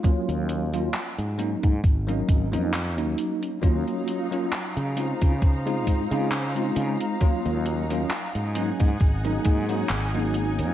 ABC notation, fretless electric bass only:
X:1
M:4/4
L:1/16
Q:"Swing 16ths" 1/4=67
K:Ebdor
V:1 name="Fretless electric bass" clef=bass
z E,,3 z A,,2 A,, A,,,2 A,,, F,,2 E,, z2 | E,, z4 D,2 D,3 A,, D,3 D, z | z E,,3 z A,,2 A,, A,,,2 A,,2 A,,,3 F,, |]